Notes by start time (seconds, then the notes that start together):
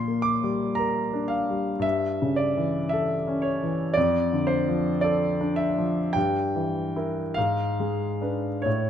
Already playing: A#2 C6
0.08 A#3
0.22 D6
0.43 G3
0.75 A#4 A#5
1.13 D4
1.28 F5
1.50 G3
1.79 G2 E5
2.22 C#3
2.36 D5
2.57 E3
2.89 A4 E5
3.27 C#4
3.42 C#5
3.63 E3
3.94 F2 D5
4.33 D3
4.47 C5
4.68 F3
5.01 A4 D5
5.41 D4
5.56 E5
5.78 F3
6.13 G2 G5
6.55 E3
6.96 E4 A#4
7.34 G#2 F5
7.80 G#3
8.21 D4 B4
8.62 A2 C#5